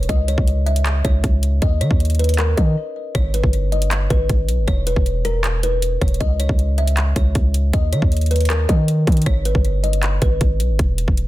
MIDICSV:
0, 0, Header, 1, 4, 480
1, 0, Start_track
1, 0, Key_signature, 5, "minor"
1, 0, Tempo, 382166
1, 116, Time_signature, 4, 2, 24, 8
1, 14163, End_track
2, 0, Start_track
2, 0, Title_t, "Kalimba"
2, 0, Program_c, 0, 108
2, 112, Note_on_c, 0, 75, 111
2, 340, Note_off_c, 0, 75, 0
2, 354, Note_on_c, 0, 73, 82
2, 806, Note_off_c, 0, 73, 0
2, 834, Note_on_c, 0, 76, 74
2, 1286, Note_off_c, 0, 76, 0
2, 1313, Note_on_c, 0, 73, 73
2, 1991, Note_off_c, 0, 73, 0
2, 2036, Note_on_c, 0, 75, 97
2, 2262, Note_off_c, 0, 75, 0
2, 2273, Note_on_c, 0, 73, 92
2, 2725, Note_off_c, 0, 73, 0
2, 2755, Note_on_c, 0, 71, 72
2, 2981, Note_off_c, 0, 71, 0
2, 2996, Note_on_c, 0, 70, 78
2, 3222, Note_off_c, 0, 70, 0
2, 3233, Note_on_c, 0, 75, 81
2, 3911, Note_off_c, 0, 75, 0
2, 3956, Note_on_c, 0, 73, 118
2, 4182, Note_off_c, 0, 73, 0
2, 4195, Note_on_c, 0, 71, 77
2, 4646, Note_off_c, 0, 71, 0
2, 4675, Note_on_c, 0, 75, 72
2, 5126, Note_off_c, 0, 75, 0
2, 5154, Note_on_c, 0, 71, 76
2, 5832, Note_off_c, 0, 71, 0
2, 5872, Note_on_c, 0, 73, 100
2, 6100, Note_off_c, 0, 73, 0
2, 6114, Note_on_c, 0, 71, 79
2, 6566, Note_off_c, 0, 71, 0
2, 6592, Note_on_c, 0, 70, 95
2, 7045, Note_off_c, 0, 70, 0
2, 7075, Note_on_c, 0, 71, 79
2, 7526, Note_off_c, 0, 71, 0
2, 7555, Note_on_c, 0, 73, 76
2, 7781, Note_off_c, 0, 73, 0
2, 7793, Note_on_c, 0, 75, 111
2, 8020, Note_off_c, 0, 75, 0
2, 8036, Note_on_c, 0, 73, 83
2, 8487, Note_off_c, 0, 73, 0
2, 8517, Note_on_c, 0, 76, 75
2, 8967, Note_off_c, 0, 76, 0
2, 8998, Note_on_c, 0, 73, 69
2, 9673, Note_off_c, 0, 73, 0
2, 9719, Note_on_c, 0, 75, 99
2, 9943, Note_off_c, 0, 75, 0
2, 9954, Note_on_c, 0, 73, 89
2, 10406, Note_off_c, 0, 73, 0
2, 10436, Note_on_c, 0, 71, 71
2, 10662, Note_off_c, 0, 71, 0
2, 10676, Note_on_c, 0, 70, 79
2, 10902, Note_off_c, 0, 70, 0
2, 10912, Note_on_c, 0, 75, 79
2, 11590, Note_off_c, 0, 75, 0
2, 11634, Note_on_c, 0, 73, 118
2, 11861, Note_off_c, 0, 73, 0
2, 11875, Note_on_c, 0, 71, 78
2, 12326, Note_off_c, 0, 71, 0
2, 12353, Note_on_c, 0, 75, 75
2, 12805, Note_off_c, 0, 75, 0
2, 12835, Note_on_c, 0, 71, 76
2, 13512, Note_off_c, 0, 71, 0
2, 14163, End_track
3, 0, Start_track
3, 0, Title_t, "808-style bass"
3, 0, Program_c, 1, 38
3, 115, Note_on_c, 1, 37, 113
3, 461, Note_off_c, 1, 37, 0
3, 475, Note_on_c, 1, 37, 103
3, 1282, Note_off_c, 1, 37, 0
3, 1315, Note_on_c, 1, 37, 103
3, 1545, Note_off_c, 1, 37, 0
3, 1555, Note_on_c, 1, 37, 101
3, 2016, Note_off_c, 1, 37, 0
3, 2035, Note_on_c, 1, 39, 106
3, 2274, Note_on_c, 1, 51, 100
3, 2293, Note_off_c, 1, 39, 0
3, 2389, Note_off_c, 1, 51, 0
3, 2394, Note_on_c, 1, 39, 101
3, 3201, Note_off_c, 1, 39, 0
3, 3235, Note_on_c, 1, 51, 102
3, 3465, Note_off_c, 1, 51, 0
3, 3956, Note_on_c, 1, 32, 113
3, 4301, Note_off_c, 1, 32, 0
3, 4314, Note_on_c, 1, 31, 102
3, 5121, Note_off_c, 1, 31, 0
3, 5155, Note_on_c, 1, 32, 104
3, 5385, Note_off_c, 1, 32, 0
3, 5395, Note_on_c, 1, 32, 104
3, 5636, Note_on_c, 1, 35, 102
3, 5654, Note_off_c, 1, 32, 0
3, 5756, Note_on_c, 1, 32, 97
3, 5775, Note_off_c, 1, 35, 0
3, 5870, Note_off_c, 1, 32, 0
3, 5875, Note_on_c, 1, 28, 111
3, 6221, Note_off_c, 1, 28, 0
3, 6234, Note_on_c, 1, 28, 106
3, 7504, Note_off_c, 1, 28, 0
3, 7555, Note_on_c, 1, 28, 102
3, 7785, Note_off_c, 1, 28, 0
3, 7795, Note_on_c, 1, 37, 115
3, 8141, Note_off_c, 1, 37, 0
3, 8154, Note_on_c, 1, 37, 106
3, 8961, Note_off_c, 1, 37, 0
3, 8994, Note_on_c, 1, 37, 103
3, 9225, Note_off_c, 1, 37, 0
3, 9235, Note_on_c, 1, 37, 106
3, 9696, Note_off_c, 1, 37, 0
3, 9715, Note_on_c, 1, 39, 107
3, 9955, Note_on_c, 1, 51, 102
3, 9974, Note_off_c, 1, 39, 0
3, 10069, Note_off_c, 1, 51, 0
3, 10075, Note_on_c, 1, 39, 104
3, 10881, Note_off_c, 1, 39, 0
3, 10915, Note_on_c, 1, 51, 103
3, 11376, Note_off_c, 1, 51, 0
3, 11396, Note_on_c, 1, 51, 104
3, 11626, Note_off_c, 1, 51, 0
3, 11635, Note_on_c, 1, 32, 111
3, 11981, Note_off_c, 1, 32, 0
3, 11994, Note_on_c, 1, 31, 100
3, 12801, Note_off_c, 1, 31, 0
3, 12834, Note_on_c, 1, 32, 102
3, 13065, Note_off_c, 1, 32, 0
3, 13075, Note_on_c, 1, 32, 104
3, 13314, Note_on_c, 1, 35, 98
3, 13333, Note_off_c, 1, 32, 0
3, 13434, Note_on_c, 1, 32, 100
3, 13453, Note_off_c, 1, 35, 0
3, 13549, Note_off_c, 1, 32, 0
3, 13554, Note_on_c, 1, 28, 115
3, 13900, Note_off_c, 1, 28, 0
3, 13914, Note_on_c, 1, 28, 98
3, 14163, Note_off_c, 1, 28, 0
3, 14163, End_track
4, 0, Start_track
4, 0, Title_t, "Drums"
4, 35, Note_on_c, 9, 42, 60
4, 115, Note_off_c, 9, 42, 0
4, 115, Note_on_c, 9, 36, 124
4, 115, Note_on_c, 9, 42, 70
4, 241, Note_off_c, 9, 36, 0
4, 241, Note_off_c, 9, 42, 0
4, 355, Note_on_c, 9, 42, 93
4, 475, Note_on_c, 9, 36, 96
4, 480, Note_off_c, 9, 42, 0
4, 597, Note_on_c, 9, 42, 63
4, 600, Note_off_c, 9, 36, 0
4, 722, Note_off_c, 9, 42, 0
4, 836, Note_on_c, 9, 42, 46
4, 956, Note_off_c, 9, 42, 0
4, 956, Note_on_c, 9, 42, 78
4, 1074, Note_off_c, 9, 42, 0
4, 1074, Note_on_c, 9, 42, 78
4, 1076, Note_on_c, 9, 39, 117
4, 1200, Note_off_c, 9, 42, 0
4, 1201, Note_off_c, 9, 39, 0
4, 1315, Note_on_c, 9, 36, 97
4, 1315, Note_on_c, 9, 42, 77
4, 1440, Note_off_c, 9, 36, 0
4, 1440, Note_off_c, 9, 42, 0
4, 1555, Note_on_c, 9, 36, 99
4, 1555, Note_on_c, 9, 42, 83
4, 1680, Note_off_c, 9, 36, 0
4, 1680, Note_off_c, 9, 42, 0
4, 1795, Note_on_c, 9, 42, 68
4, 1920, Note_off_c, 9, 42, 0
4, 2034, Note_on_c, 9, 42, 73
4, 2035, Note_on_c, 9, 36, 117
4, 2159, Note_off_c, 9, 42, 0
4, 2161, Note_off_c, 9, 36, 0
4, 2274, Note_on_c, 9, 42, 94
4, 2394, Note_on_c, 9, 36, 91
4, 2399, Note_off_c, 9, 42, 0
4, 2515, Note_on_c, 9, 42, 63
4, 2520, Note_off_c, 9, 36, 0
4, 2575, Note_off_c, 9, 42, 0
4, 2575, Note_on_c, 9, 42, 55
4, 2636, Note_off_c, 9, 42, 0
4, 2636, Note_on_c, 9, 42, 46
4, 2696, Note_off_c, 9, 42, 0
4, 2696, Note_on_c, 9, 42, 37
4, 2756, Note_off_c, 9, 42, 0
4, 2756, Note_on_c, 9, 42, 64
4, 2816, Note_off_c, 9, 42, 0
4, 2816, Note_on_c, 9, 42, 63
4, 2876, Note_off_c, 9, 42, 0
4, 2876, Note_on_c, 9, 42, 64
4, 2937, Note_off_c, 9, 42, 0
4, 2937, Note_on_c, 9, 42, 62
4, 2995, Note_off_c, 9, 42, 0
4, 2995, Note_on_c, 9, 42, 77
4, 2996, Note_on_c, 9, 39, 113
4, 3121, Note_off_c, 9, 42, 0
4, 3122, Note_off_c, 9, 39, 0
4, 3235, Note_on_c, 9, 36, 96
4, 3235, Note_on_c, 9, 42, 77
4, 3360, Note_off_c, 9, 36, 0
4, 3360, Note_off_c, 9, 42, 0
4, 3955, Note_on_c, 9, 42, 71
4, 3956, Note_on_c, 9, 36, 124
4, 4081, Note_off_c, 9, 36, 0
4, 4081, Note_off_c, 9, 42, 0
4, 4195, Note_on_c, 9, 42, 92
4, 4315, Note_on_c, 9, 36, 92
4, 4321, Note_off_c, 9, 42, 0
4, 4435, Note_on_c, 9, 42, 61
4, 4440, Note_off_c, 9, 36, 0
4, 4561, Note_off_c, 9, 42, 0
4, 4675, Note_on_c, 9, 42, 48
4, 4795, Note_off_c, 9, 42, 0
4, 4795, Note_on_c, 9, 42, 78
4, 4914, Note_off_c, 9, 42, 0
4, 4914, Note_on_c, 9, 42, 77
4, 4915, Note_on_c, 9, 39, 113
4, 5039, Note_off_c, 9, 42, 0
4, 5041, Note_off_c, 9, 39, 0
4, 5154, Note_on_c, 9, 42, 75
4, 5155, Note_on_c, 9, 36, 94
4, 5280, Note_off_c, 9, 36, 0
4, 5280, Note_off_c, 9, 42, 0
4, 5394, Note_on_c, 9, 42, 87
4, 5395, Note_on_c, 9, 36, 100
4, 5520, Note_off_c, 9, 36, 0
4, 5520, Note_off_c, 9, 42, 0
4, 5634, Note_on_c, 9, 42, 70
4, 5759, Note_off_c, 9, 42, 0
4, 5874, Note_on_c, 9, 42, 75
4, 5875, Note_on_c, 9, 36, 118
4, 6000, Note_off_c, 9, 42, 0
4, 6001, Note_off_c, 9, 36, 0
4, 6114, Note_on_c, 9, 42, 96
4, 6234, Note_on_c, 9, 36, 93
4, 6239, Note_off_c, 9, 42, 0
4, 6356, Note_on_c, 9, 42, 64
4, 6360, Note_off_c, 9, 36, 0
4, 6481, Note_off_c, 9, 42, 0
4, 6593, Note_on_c, 9, 42, 77
4, 6719, Note_off_c, 9, 42, 0
4, 6834, Note_on_c, 9, 42, 78
4, 6835, Note_on_c, 9, 39, 114
4, 6959, Note_off_c, 9, 42, 0
4, 6961, Note_off_c, 9, 39, 0
4, 7075, Note_on_c, 9, 42, 78
4, 7201, Note_off_c, 9, 42, 0
4, 7314, Note_on_c, 9, 42, 86
4, 7440, Note_off_c, 9, 42, 0
4, 7555, Note_on_c, 9, 36, 103
4, 7555, Note_on_c, 9, 42, 59
4, 7635, Note_off_c, 9, 42, 0
4, 7635, Note_on_c, 9, 42, 60
4, 7681, Note_off_c, 9, 36, 0
4, 7715, Note_off_c, 9, 42, 0
4, 7715, Note_on_c, 9, 42, 59
4, 7795, Note_off_c, 9, 42, 0
4, 7795, Note_on_c, 9, 36, 122
4, 7795, Note_on_c, 9, 42, 73
4, 7920, Note_off_c, 9, 42, 0
4, 7921, Note_off_c, 9, 36, 0
4, 8034, Note_on_c, 9, 42, 95
4, 8154, Note_on_c, 9, 36, 92
4, 8160, Note_off_c, 9, 42, 0
4, 8275, Note_on_c, 9, 42, 61
4, 8280, Note_off_c, 9, 36, 0
4, 8401, Note_off_c, 9, 42, 0
4, 8515, Note_on_c, 9, 42, 45
4, 8635, Note_off_c, 9, 42, 0
4, 8635, Note_on_c, 9, 42, 78
4, 8754, Note_off_c, 9, 42, 0
4, 8754, Note_on_c, 9, 42, 80
4, 8755, Note_on_c, 9, 39, 114
4, 8879, Note_off_c, 9, 42, 0
4, 8881, Note_off_c, 9, 39, 0
4, 8993, Note_on_c, 9, 42, 76
4, 8994, Note_on_c, 9, 36, 95
4, 9119, Note_off_c, 9, 42, 0
4, 9120, Note_off_c, 9, 36, 0
4, 9233, Note_on_c, 9, 42, 84
4, 9235, Note_on_c, 9, 36, 100
4, 9359, Note_off_c, 9, 42, 0
4, 9360, Note_off_c, 9, 36, 0
4, 9474, Note_on_c, 9, 42, 71
4, 9600, Note_off_c, 9, 42, 0
4, 9715, Note_on_c, 9, 36, 119
4, 9715, Note_on_c, 9, 42, 74
4, 9840, Note_off_c, 9, 42, 0
4, 9841, Note_off_c, 9, 36, 0
4, 9955, Note_on_c, 9, 42, 92
4, 10075, Note_on_c, 9, 36, 90
4, 10081, Note_off_c, 9, 42, 0
4, 10196, Note_on_c, 9, 42, 61
4, 10200, Note_off_c, 9, 36, 0
4, 10256, Note_off_c, 9, 42, 0
4, 10256, Note_on_c, 9, 42, 55
4, 10317, Note_off_c, 9, 42, 0
4, 10317, Note_on_c, 9, 42, 44
4, 10377, Note_off_c, 9, 42, 0
4, 10377, Note_on_c, 9, 42, 37
4, 10436, Note_off_c, 9, 42, 0
4, 10436, Note_on_c, 9, 42, 63
4, 10497, Note_off_c, 9, 42, 0
4, 10497, Note_on_c, 9, 42, 67
4, 10557, Note_off_c, 9, 42, 0
4, 10557, Note_on_c, 9, 42, 63
4, 10617, Note_off_c, 9, 42, 0
4, 10617, Note_on_c, 9, 42, 63
4, 10675, Note_off_c, 9, 42, 0
4, 10675, Note_on_c, 9, 42, 81
4, 10677, Note_on_c, 9, 39, 111
4, 10801, Note_off_c, 9, 42, 0
4, 10802, Note_off_c, 9, 39, 0
4, 10915, Note_on_c, 9, 36, 92
4, 10916, Note_on_c, 9, 42, 77
4, 11041, Note_off_c, 9, 36, 0
4, 11041, Note_off_c, 9, 42, 0
4, 11156, Note_on_c, 9, 42, 83
4, 11281, Note_off_c, 9, 42, 0
4, 11395, Note_on_c, 9, 36, 104
4, 11396, Note_on_c, 9, 42, 59
4, 11456, Note_off_c, 9, 42, 0
4, 11456, Note_on_c, 9, 42, 61
4, 11516, Note_off_c, 9, 42, 0
4, 11516, Note_on_c, 9, 42, 60
4, 11521, Note_off_c, 9, 36, 0
4, 11576, Note_off_c, 9, 42, 0
4, 11576, Note_on_c, 9, 42, 59
4, 11634, Note_off_c, 9, 42, 0
4, 11634, Note_on_c, 9, 42, 74
4, 11635, Note_on_c, 9, 36, 122
4, 11760, Note_off_c, 9, 42, 0
4, 11761, Note_off_c, 9, 36, 0
4, 11874, Note_on_c, 9, 42, 91
4, 11994, Note_on_c, 9, 36, 96
4, 11999, Note_off_c, 9, 42, 0
4, 12115, Note_on_c, 9, 42, 61
4, 12120, Note_off_c, 9, 36, 0
4, 12240, Note_off_c, 9, 42, 0
4, 12355, Note_on_c, 9, 42, 46
4, 12475, Note_off_c, 9, 42, 0
4, 12475, Note_on_c, 9, 42, 79
4, 12593, Note_off_c, 9, 42, 0
4, 12593, Note_on_c, 9, 42, 76
4, 12595, Note_on_c, 9, 39, 114
4, 12719, Note_off_c, 9, 42, 0
4, 12720, Note_off_c, 9, 39, 0
4, 12833, Note_on_c, 9, 42, 81
4, 12834, Note_on_c, 9, 36, 94
4, 12959, Note_off_c, 9, 42, 0
4, 12960, Note_off_c, 9, 36, 0
4, 13073, Note_on_c, 9, 42, 84
4, 13074, Note_on_c, 9, 36, 97
4, 13198, Note_off_c, 9, 42, 0
4, 13200, Note_off_c, 9, 36, 0
4, 13314, Note_on_c, 9, 42, 69
4, 13439, Note_off_c, 9, 42, 0
4, 13554, Note_on_c, 9, 42, 74
4, 13555, Note_on_c, 9, 36, 119
4, 13680, Note_off_c, 9, 42, 0
4, 13681, Note_off_c, 9, 36, 0
4, 13793, Note_on_c, 9, 42, 95
4, 13914, Note_on_c, 9, 36, 91
4, 13918, Note_off_c, 9, 42, 0
4, 14035, Note_on_c, 9, 42, 62
4, 14040, Note_off_c, 9, 36, 0
4, 14160, Note_off_c, 9, 42, 0
4, 14163, End_track
0, 0, End_of_file